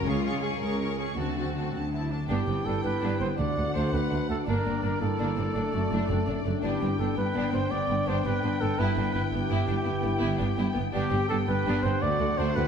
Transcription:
Already playing: harp C#4
0.05 cello section C#2, double bass section C#2, harp C#3, viola section C#4 G#4, violin section F4 C#6
0.23 harp G#3, viola section C#4 G#4, violin section C#6
0.42 viola section C#4 G#4, violin section G#4 C#6, harp C#5
0.61 cello section C#2, harp G#3, viola section C#4 G#4, violin section A#4 C#6
0.80 harp C#4, viola section C#4 G#4, violin section C#6
0.97 harp G#3, viola section C#4 G#4, violin section G#4 C#6
1.17 double bass section D2, cello section D2, harp D3, viola section C4 F#4, violin section F#4 A5
1.36 harp F#3, viola section C4 F#4, violin section A5
1.54 viola section C4 F#4, harp A4, violin section A5
1.74 cello section D2, harp F#3, viola section F#4, violin section A5
1.92 harp C4, viola section E4, violin section A5
2.11 harp F#3, viola section D4, violin section A5
2.29 double bass section G1, cello section G2, harp G2, viola section B3, french horn section B3 G4, violin section D4 G5, clarinet E4, trumpet G4
2.47 double bass section G1, cello section G2, harp G3, viola section B3, violin section C4
2.65 double bass section G1, cello section G2, viola section B3, violin section D4, trumpet A4
2.84 double bass section G1, cello section G2, viola section B3, violin section B3, harp G4, trumpet B4
3.01 double bass section G1, cello section G2, viola section B3, violin section D4, harp D5
3.20 double bass section G1, cello section G2, viola section B3, violin section C4, harp B4, trumpet C5
3.37 cello section D2, double bass section D2, harp D3, timpani D3, viola section A3, french horn section A3 F#4, violin section D4 F#5, clarinet D4, trumpet D5
3.57 cello section D2, double bass section D2, violin section A3, viola section A3, harp D4
3.73 cello section D2, double bass section D2, viola section A3, violin section D4, harp F#4, trumpet C5
3.92 double bass section D2, cello section D2, viola section A3, violin section C4, trumpet B4
4.10 double bass section D2, cello section D2, viola section A3, violin section D4, harp A5
4.29 double bass section D2, cello section D2, violin section A3, viola section A3, harp F#4, trumpet A4
4.47 double bass section G1, cello section G2, harp G2, french horn section A#3 D4, viola section A#3, violin section D4 D5, clarinet D4, trumpet A#4
4.66 double bass section G1, cello section G2, harp G3, viola section A#3, violin section C4
4.82 double bass section G1, cello section G2, viola section A#3, violin section D4, trumpet A#4, harp A#4
5.00 double bass section G1, cello section G2, violin section A#3, viola section A#3, clarinet E4, harp G4, trumpet A4
5.18 double bass section G1, cello section G2, viola section A#3, violin section D4
5.36 double bass section G1, cello section G2, viola section A#3, violin section C4, harp A#4
5.55 double bass section F#1, cello section F#2, harp F#2, viola section A3, french horn section A3, violin section D4, clarinet D4
5.74 double bass section F#1, cello section F#2, viola section A3, violin section A3, harp A3, clarinet F#4
5.91 double bass section F#1, cello section F#2, viola section A3, violin section D4, clarinet E4, harp D5
6.09 double bass section F#1, cello section F#2, viola section A3, violin section C4, clarinet D4, harp A4
6.27 double bass section F#1, cello section F#2, viola section A3, clarinet C4, violin section D4
6.44 double bass section F#1, cello section F#2, violin section A3, viola section A3, harp D4, clarinet D4
6.62 double bass section G1, harp G2, cello section G2, viola section B3, french horn section B3, violin section D4 G5, clarinet E4, trumpet G4
6.81 double bass section G1, cello section G2, harp B3, viola section B3, violin section C4
6.99 double bass section G1, cello section G2, viola section B3, violin section D4, trumpet A4, harp D5
7.17 double bass section G1, cello section G2, viola section B3, violin section B3, clarinet D4, trumpet B4
7.35 double bass section G1, cello section G2, viola section B3, violin section D4, harp D5
7.52 double bass section G1, cello section G2, viola section B3, violin section C4, harp D4, trumpet C5
7.70 double bass section G1, cello section G2, harp D3, clarinet B3, viola section B3, violin section D4, trumpet D5
7.89 double bass section G1, cello section G2, violin section B3, viola section B3
8.06 double bass section G1, cello section G2, viola section B3, violin section D4, trumpet C5
8.24 double bass section G1, cello section G2, viola section B3, violin section C4, clarinet D4, harp B4, trumpet B4
8.42 double bass section G1, cello section G2, viola section B3, violin section D4, harp D5
8.60 double bass section G1, cello section G2, viola section B3, violin section B3, harp D4, trumpet A4
8.78 double bass section G1, harp G2, cello section G2, viola section B3, french horn section E4, violin section E4, trumpet B4
8.96 double bass section G1, cello section G2, viola section B3, harp B3, violin section D4
9.13 double bass section G1, cello section G2, viola section B3, violin section E4, trumpet B4, harp E5
9.32 double bass section G1, cello section G2, viola section B3, violin section B3, trumpet G4, harp B4
9.49 double bass section G1, cello section G2, viola section B3, violin section E4, harp G5
9.68 double bass section G1, cello section G2, viola section B3, violin section D4, harp E5
9.85 double bass section G1, harp G2, cello section G2, viola section B3, violin section E4, clarinet E4
10.01 double bass section G1, cello section G2, violin section B3, viola section B3
10.19 double bass section G1, cello section G2, viola section B3, violin section E4, harp E5
10.38 double bass section G1, cello section G2, viola section B3, clarinet B3, violin section D4, harp B4
10.58 double bass section G1, cello section G2, viola section B3, violin section E4, harp G5
10.74 double bass section G1, cello section G2, violin section B3, viola section B3, harp E5
10.93 double bass section G1, harp G2, cello section G2, viola section B3, french horn section B3 G4, violin section D4 G5, trumpet G4
11.11 double bass section G1, cello section G2, viola section B3, violin section C4
11.29 double bass section G1, cello section G2, viola section B3, violin section D4, trumpet A4, harp D5
11.48 double bass section G1, cello section G2, viola section B3, violin section B3, clarinet D4, trumpet B4
11.66 double bass section G1, cello section G2, viola section B3, violin section D4, harp G5
11.83 double bass section G1, cello section G2, viola section B3, violin section C4, trumpet C5, harp D5
12.02 double bass section D2, cello section D2, harp D3, french horn section A3 F#4, viola section A3, violin section D4 F#5, clarinet F#4, trumpet D5
12.20 double bass section D2, cello section D2, harp F#3, violin section A3, viola section A3
12.38 double bass section D2, cello section D2, viola section A3, violin section D4, trumpet C5
12.56 cello section D2, double bass section D2, viola section A3, violin section C4, clarinet E4, harp A4, trumpet B4

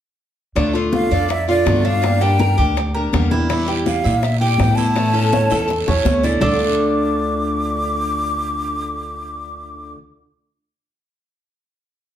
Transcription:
0.55 upright bass D2, steel-string acoustic guitar D3 A3 D4 F4, cuban tres D4, high bongo, high conga
0.73 steel-string acoustic guitar A3 D4 F4, cuban tres F4, high conga
0.93 flute F5, high bongo, high conga
1.11 upright bass F2, steel-string acoustic guitar A3 D4 F4, cuban tres D5, high conga
1.28 flute E5, muted steel-string acoustic guitar stroke, high bongo, high conga
1.48 steel-string acoustic guitar A3 D4 F4, cuban tres F4, flute D5, high conga
1.65 upright bass G2, steel-string acoustic guitar D3 A3 D4 F4, high bongo, low bongo, high conga
1.84 steel-string acoustic guitar A3 D4 F4, cuban tres D4, flute F5
2.02 steel-string acoustic guitar D3 G3 A#3 D4 G4, high bongo, high conga
2.21 steel-string acoustic guitar G3 A#3 D4 G4, cuban tres G4, flute G5, high bongo, high conga
2.39 cuban tres A#4, high bongo, high conga
2.57 upright bass D2, steel-string acoustic guitar A#3 D4 G4, cuban tres G4, high bongo, high conga
2.76 muted steel-string acoustic guitar stroke, high bongo, high conga
2.94 steel-string acoustic guitar A#3 D4 G4, cuban tres A#4, high conga
3.13 upright bass E2, steel-string acoustic guitar D3 G3 A#3 D4 G4, high bongo, low bongo, high conga
3.31 steel-string acoustic guitar A#3 D4 G4, cuban tres E4, high bongo, high conga
3.49 steel-string acoustic guitar E3 G3 E4, cuban tres E4, high bongo, high conga, long guiro
3.68 steel-string acoustic guitar G3 E4, cuban tres G4
3.86 flute F5, high bongo, high conga, short guiro
4.04 upright bass A#2, steel-string acoustic guitar G3 E4, cuban tres E5, high conga, short guiro
4.22 flute E5, muted steel-string acoustic guitar stroke, high bongo, high conga, long guiro
4.40 steel-string acoustic guitar G3 E4, cuban tres G4, flute G5, high conga
4.58 upright bass A2, steel-string acoustic guitar E3 G3, high bongo, low bongo, high conga, short guiro
4.62 steel-string acoustic guitar E4
4.76 steel-string acoustic guitar E4, cuban tres E4, flute A5, high conga, short guiro
4.80 steel-string acoustic guitar G3
4.95 steel-string acoustic guitar E3 A3 C#4 E4, high bongo, high conga, long guiro
5.13 steel-string acoustic guitar A3 C#4 E4, cuban tres A4, high bongo, high conga
5.32 cuban tres C#5, high bongo, high conga, short guiro
5.50 upright bass E2, steel-string acoustic guitar A3 C#4 E4, cuban tres A4, high bongo, short guiro
5.68 muted steel-string acoustic guitar stroke, high bongo, high conga, long guiro
5.86 upright bass E2, steel-string acoustic guitar A3 C#4 E4, cuban tres C#5, low bongo, high conga
6.04 upright bass D2, steel-string acoustic guitar E3 A3 C#4 E4, low bongo, high conga, short guiro
6.23 steel-string acoustic guitar A3 C#4 E4, cuban tres D4, low bongo, high conga, short guiro
6.41 upright bass D2, steel-string acoustic guitar D3 A3 D4 F4, cuban tres D4 A4 D5, flute D6, low bongo, low conga, long guiro

